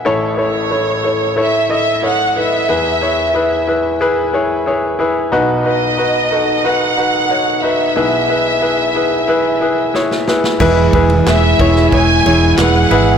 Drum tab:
CC |----------------|----------------|----------------|----------------|
RD |----------------|----------------|----------------|----------------|
CP |----------------|----------------|----------------|----------------|
SD |----------------|----------------|----------------|------------oooo|
BD |----------------|----------------|----------------|----------------|

CC |x---------------|
RD |--xxx-x-x-x-x-x-|
CP |----x-------x---|
SD |----o--o----o---|
BD |o-o---o-o-------|